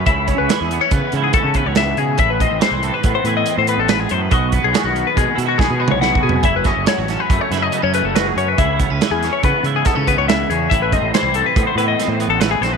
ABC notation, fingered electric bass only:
X:1
M:5/4
L:1/16
Q:1/4=141
K:C#m
V:1 name="Fingered electric bass" clef=bass
C,,3 C,, z E,,2 z C, z C,2 z C,2 C,,3 C,2 | A,,,3 A,,, z =C,,2 z A,, z A,,2 z A,,2 A,,,3 F,,2 | B,,,3 B,,, z B,,,2 z B,, z B,,2 z B,,2 B,,,3 B,,2 | F,,,3 F,,, z A,,,2 z F,, z F,,2 z F,,2 F,,,3 F,,2 |
C,,3 C,, z E,,2 z C, z C,2 z C,2 C,,3 E,,2 | A,,,3 A,,, z =C,,2 z A,, z A,,2 z A,,2 A,,,3 ^A,,,2 |]